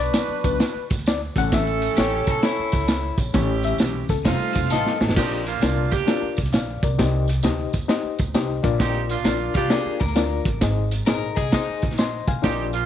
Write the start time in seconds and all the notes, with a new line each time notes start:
Already playing: F#3 B3 D4 F#4 B4
0.00 D5
0.14 snare, closed hi-hat, tambourine
0.28 muted upright bass stroke
0.44 C#2 F#3 B3 D4 B4, kick, closed hi-hat, tambourine
0.60 snare, closed hi-hat, tambourine
0.75 muted upright bass stroke
0.90 D2, kick, closed hi-hat, tambourine
0.99 closed hi-hat
1.06 D5, snare, closed hi-hat, tambourine
1.36 A1 E3 A3 C#4 E4 A4 F#5, kick, closed hi-hat, tambourine
1.52 E5, kick, snare, closed hi-hat, tambourine
1.67 closed hi-hat
1.82 closed hi-hat, tambourine
1.96 A1 G4 C#5, snare, closed hi-hat, tambourine
2.27 B1 A4, kick, closed hi-hat, tambourine
2.43 E4 C#5, snare, closed hi-hat, tambourine
2.59 muted upright bass stroke
2.72 C#2, kick, closed hi-hat, tambourine
2.81 closed hi-hat
2.88 snare, closed hi-hat, tambourine
3.17 A#1, kick, closed hi-hat, tambourine
3.34 A1 E3 A3 C#4 E4 G4 C#5, kick, snare, closed hi-hat, tambourine
3.63 E5, closed hi-hat, tambourine
3.78 B1, snare, closed hi-hat, tambourine
4.09 C#2 A4, kick, closed hi-hat, tambourine
4.25 F1 G3 A3 C4 D#4 F4 C5, kick, snare, closed hi-hat, tambourine
4.40 muted upright bass stroke
4.53 F1 F4, kick, closed hi-hat, tambourine
4.64 snare
4.70 A1 A4 D#5, snare, tambourine
4.86 snare
5.01 A1, snare, tambourine
5.09 F1, snare
5.16 A#1 A#2 C4 D4 D#4 F4 G4 A#4 D5, kick, snare, crash, tambourine
5.31 closed hi-hat
5.46 A#3 D4 F4, closed hi-hat, tambourine
5.61 C2 D4 F4 A#4 D5, snare, closed hi-hat, tambourine
5.91 A#3 D4 G4, kick, closed hi-hat, tambourine
6.07 D4 F4 A#4 D5, snare, closed hi-hat, tambourine
6.22 muted upright bass stroke
6.37 C2, kick, closed hi-hat, tambourine
6.46 closed hi-hat
6.52 A#1 D5 F5, snare, closed hi-hat, tambourine
6.83 C2 A#4 D5, kick, closed hi-hat, tambourine
6.98 C2 C3 D#4 G4 C5 D#5, kick, snare, closed hi-hat, tambourine
7.28 closed hi-hat, tambourine
7.43 D2 D#4 G4 C5 D#5, snare, closed hi-hat, tambourine
7.73 D#2, kick, closed hi-hat, tambourine
7.88 D#4 G4 C5 D#5, snare, closed hi-hat, tambourine
8.04 muted upright bass stroke
8.19 D2, kick, closed hi-hat, tambourine
8.34 C2 D#4 G4 C5 D#5, snare, closed hi-hat, tambourine
8.63 A#1 A#2 D4 F4 A#4 D5, kick, closed hi-hat, tambourine
8.78 C4 D#4 G4, kick, snare, closed hi-hat, tambourine
8.95 closed hi-hat
9.09 A#3 D4 F4, closed hi-hat, tambourine
9.24 A#1 D4 F4 A#4 D5, snare, closed hi-hat, tambourine
9.54 C2 A#3 D4 F4 G4, kick, closed hi-hat, tambourine
9.70 D4 F4 G#4 A#4 D5, snare, closed hi-hat, tambourine
9.85 muted upright bass stroke
10.00 D2 A#4, kick, closed hi-hat, tambourine
10.08 closed hi-hat
10.16 D4 F4 A#4 D5, snare, closed hi-hat, tambourine
10.45 A1, kick, closed hi-hat, tambourine
10.61 G#1 G#2 D#4 G#4 C5 D#5, kick, snare, closed hi-hat, tambourine
10.91 closed hi-hat, tambourine
11.06 A#1 D#4 G#4 A#4 C5 D#5, snare, closed hi-hat, tambourine
11.36 C2 G#4 D#5, kick, closed hi-hat, tambourine
11.52 D#4 G#4 C5 D#5 G#5, kick, snare, closed hi-hat, tambourine
11.68 muted upright bass stroke
11.82 A#1, kick, closed hi-hat, tambourine
11.91 snare, closed hi-hat
11.98 C5 D#5 C6, snare, closed hi-hat, tambourine
12.27 B1 F5 G#5, kick, closed hi-hat, tambourine
12.42 A#1 A#2 C4 D4 D#4 F4 G4 A#4 D5, kick, snare, closed hi-hat, tambourine
12.73 A#3 D4 F4, closed hi-hat, tambourine